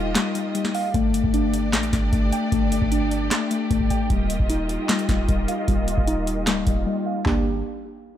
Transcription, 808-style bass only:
0.00 0.15 D#1 loud
0.94 1.23 G1 loud
1.24 1.75 G1 loud
1.73 1.92 A1 loud
1.93 2.12 G1 loud
2.13 2.32 G1 loud
2.52 2.81 G1 loud
2.82 3.29 G1 loud
3.71 3.90 G1 loud
4.10 4.39 D#1 loud
4.40 4.78 D#1 loud
5.09 5.28 D#1 loud
5.29 5.48 D#1 loud
5.68 5.96 D#1 loud
5.98 6.48 D#1 loud
6.47 6.66 D1 loud
6.67 6.86 D#1 loud
7.26 7.63 G1 loud

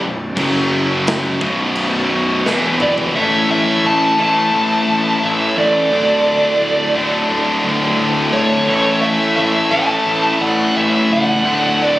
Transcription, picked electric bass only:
0.02 0.35 B0 medium
0.37 1.37 F#1 medium
1.41 2.41 B0 medium
2.46 3.15 E1 medium
3.15 3.66 A1 medium
3.85 4.10 A1 medium
4.19 4.44 A1 medium
4.54 4.79 A1 medium
4.88 5.13 A1 medium
5.23 5.48 A1 medium
5.58 5.83 A1 loud
5.92 6.42 D1 medium
6.61 6.86 D1 medium
6.95 7.21 D1 loud
7.30 7.55 D1 medium
7.64 7.89 D1 medium
7.99 8.24 D1 medium
8.33 8.58 D1 loud
8.67 9.18 A1 loud
9.37 9.63 A1 medium
9.71 9.97 A1 loud
10.06 10.32 A1 medium
10.41 10.66 A1 loud
10.76 11.01 A1 medium
11.10 11.35 C#1 loud
11.45 11.95 D1 medium

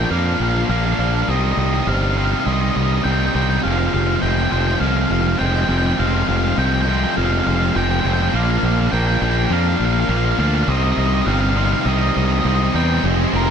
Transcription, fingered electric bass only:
0.10 0.33 F2 medium
0.40 0.63 A#1 medium
0.69 0.92 A#1 medium
0.99 1.22 A#1 medium
1.28 1.51 C2 medium
1.57 1.80 C2 medium
1.87 2.33 G1 medium
2.46 2.69 C2 medium
2.76 2.99 C2 medium
3.05 3.28 C2 medium
3.35 3.57 C2 medium
3.65 3.87 F1 medium
3.94 4.16 F1 medium
4.22 4.46 F1 medium
4.52 4.75 F1 medium
4.81 5.04 C2 medium
5.10 5.33 F1 medium
5.41 5.63 F1 medium
5.69 5.92 F1 medium
5.99 6.22 F1 medium
6.28 6.51 F1 medium
6.57 7.04 C2 medium
7.17 7.40 F1 medium
7.46 7.69 F1 medium
7.76 7.99 F1 medium
8.05 8.28 F1 medium
8.33 8.57 A#1 medium
8.63 8.86 A#1 medium
8.92 9.16 A#1 medium
9.21 9.45 A#1 medium
9.50 9.74 F2 medium
9.80 10.03 A#1 medium
10.09 10.32 A#1 medium
10.38 10.62 D2 medium
10.68 10.91 C2 loud
10.97 11.21 C2 medium
11.26 11.73 G1 medium
11.85 12.09 C2 medium
12.16 12.39 C2 medium
12.45 12.68 C2 medium
12.74 12.97 E2 medium
13.03 13.24 F1 medium
13.33 13.50 F1 medium

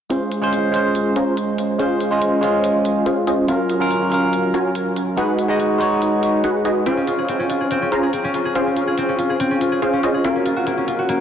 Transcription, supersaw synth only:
0.10 1.14 C#4 medium
0.10 1.14 F4 medium
0.10 1.14 G#4 medium
0.10 1.14 C5 medium
0.10 1.14 F5 medium
1.16 1.34 C#4 loud
1.16 1.34 F4 medium
1.16 1.34 G#4 medium
1.16 1.34 C5 medium
1.16 1.34 A#5 loud
1.79 3.04 C#4 medium
1.79 3.04 F4 medium
1.79 3.04 G#4 medium
1.79 3.04 C5 medium
1.79 3.04 F5 loud
3.06 3.25 C#4 medium
3.06 3.25 F4 medium
3.06 3.25 G#4 medium
3.06 3.25 C5 medium
3.06 3.25 F5 loud
3.27 3.46 C#4 medium
3.27 3.46 F4 medium
3.27 3.46 G#4 medium
3.27 3.46 C5 medium
3.27 3.46 D#5 medium
3.48 4.52 C#4 medium
3.48 4.52 F4 medium
3.48 4.52 F#4 medium
3.48 4.52 A#4 medium
3.48 4.52 F5 medium
4.54 4.72 C#4 loud
4.54 4.72 F4 medium
4.54 4.72 F#4 medium
4.54 4.72 A#4 medium
4.54 4.72 G#5 loud
5.18 6.42 D#4 medium
5.18 6.42 F#4 medium
5.18 6.42 G#4 medium
5.18 6.42 B4 medium
5.18 6.42 F#5 loud
6.44 6.63 D#4 medium
6.44 6.63 F#4 medium
6.44 6.63 G#4 medium
6.44 6.63 B4 medium
6.44 6.63 F#5 loud
6.65 6.84 D#4 medium
6.65 6.84 F#4 medium
6.65 6.84 G#4 medium
6.65 6.84 B4 medium
6.65 6.84 D#5 medium
6.86 7.90 C#4 medium
6.86 7.90 F4 medium
6.86 7.90 G#4 medium
6.86 7.90 C5 medium
6.86 7.90 F5 medium
7.92 8.10 C#4 loud
7.92 8.10 F4 medium
7.92 8.10 G#4 medium
7.92 8.10 C5 medium
7.92 8.10 A#5 loud
8.55 9.80 C#4 medium
8.55 9.80 F4 medium
8.55 9.80 G#4 medium
8.55 9.80 C5 medium
8.55 9.80 F5 loud
9.82 10.01 C#4 loud
9.82 10.01 F4 medium
9.82 10.01 G#4 medium
9.82 10.01 C5 medium
9.82 10.01 F5 loud
10.03 10.22 C#4 medium
10.03 10.22 F4 medium
10.03 10.22 G#4 medium
10.03 10.22 C5 medium
10.03 10.22 D#5 medium
10.25 11.20 C#4 medium
10.25 11.20 F4 medium
10.25 11.20 F#4 medium
10.25 11.20 A#4 medium
10.25 11.20 F5 medium

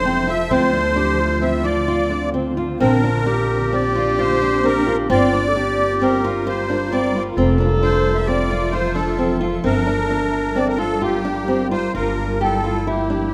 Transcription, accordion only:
0.00 0.31 C5 loud
0.29 0.51 E5 loud
0.50 1.45 C5 loud
1.42 1.65 E5 medium
1.64 2.30 D5 medium
2.80 3.75 A#4 medium
3.73 4.20 D5 medium
4.19 4.66 C5 loud
4.65 4.97 A#4 medium
5.11 6.04 D5 loud
6.02 6.48 A#4 medium
6.47 6.94 C5 medium
6.91 7.23 D5 medium
7.82 8.17 C5 medium
8.15 8.28 E5 medium
8.26 8.74 D5 loud
8.72 8.96 C5 medium
8.95 9.38 A4 medium
9.64 10.58 A#4 medium
10.56 10.68 D5 medium
10.68 10.78 A#4 medium
10.78 11.02 A4 medium
11.02 11.68 G4 medium
11.72 11.93 C5 medium
11.94 12.42 A#4 medium
12.42 12.89 A4 medium
12.88 13.34 G4 medium

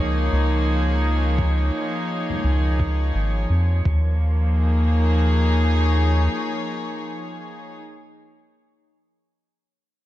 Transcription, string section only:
0.00 3.84 F3 medium
0.00 3.85 A#3 medium
0.00 3.85 D#4 medium
0.00 3.85 G#4 medium
0.00 3.85 C#5 medium
3.86 7.53 F3 medium
3.98 7.65 A#3 medium
4.45 7.79 D#4 medium
4.53 7.79 G#4 medium
4.65 7.80 C#5 medium

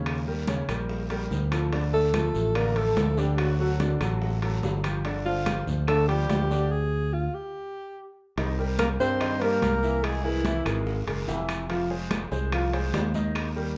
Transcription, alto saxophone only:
1.93 2.57 A4 loud
2.56 2.78 A#4 loud
2.76 3.20 A4 loud
3.18 3.40 G4 medium
3.38 3.59 F#4 medium
3.59 3.98 F#4 medium
5.26 5.64 F4 medium
5.88 6.08 A4 loud
6.08 6.73 G4 loud
6.71 7.15 G#4 loud
7.13 7.36 F4 medium
7.34 8.17 G4 medium
8.79 8.88 A#4 loud
9.00 9.43 C5 loud
9.41 10.05 A#4 loud
10.04 10.26 G#4 medium
10.24 10.87 E4 medium

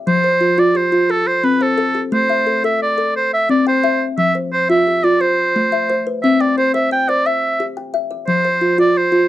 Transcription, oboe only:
0.08 0.61 C5 loud
0.59 0.78 D5 medium
0.76 1.12 C5 medium
1.10 1.28 A4 medium
1.27 1.46 C5 medium
1.44 1.63 B4 medium
1.62 2.00 A4 medium
2.13 2.61 C5 loud
2.65 2.80 E5 medium
2.82 3.14 D5 medium
3.16 3.32 C5 medium
3.33 3.49 E5 loud
3.50 3.66 D5 medium
3.68 4.03 C5 medium
4.18 4.34 E5 loud
4.53 4.68 C5 loud
4.70 5.05 E5 medium
5.04 5.22 D5 medium
5.21 6.06 C5 medium
6.23 6.42 E5 loud
6.41 6.57 D5 medium
6.57 6.73 C5 loud
6.74 6.90 E5 medium
6.92 7.10 G5 medium
7.09 7.28 D5 loud
7.26 7.64 E5 medium
8.28 8.75 C5 loud
8.80 8.99 D5 medium
8.97 9.28 C5 medium

